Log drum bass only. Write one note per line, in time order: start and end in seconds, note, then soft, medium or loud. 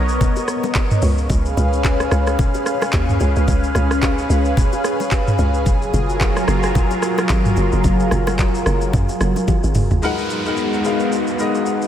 0.00 0.18 B1 loud
1.02 1.27 C#2 loud
1.30 1.54 C#2 loud
1.57 2.08 C#2 loud
2.12 2.36 C#2 loud
2.93 3.18 D#2 loud
3.21 3.35 C#2 loud
3.36 3.47 C#2 medium
3.48 3.73 C#2 loud
3.75 4.26 C#2 loud
4.30 4.54 C#2 loud
5.39 5.68 C#2 medium
5.66 5.91 F#1 loud
5.93 6.44 F#1 loud
6.48 6.73 F#1 loud
7.30 7.54 G#1 loud
7.57 7.71 F#1 medium
7.73 7.83 F#1 medium
7.84 8.09 F#1 loud
8.12 8.62 F#1 loud
8.66 8.91 F#1 loud
8.93 9.08 F#2 loud
9.21 9.35 F#1 loud
9.64 9.74 G#1 loud
9.75 9.89 F#1 loud
9.91 10.01 F1 medium